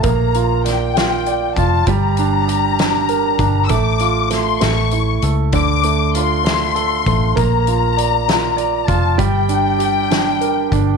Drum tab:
HH |xxxxxx|xxxxxx|xxxxxx|xxxxxx|
SD |--oo--|---o--|--oo--|---o--|
BD |o----o|o----o|o-----|o----o|

HH |xxxxxx|xxxxxx|
SD |---o--|---o--|
BD |o----o|o----o|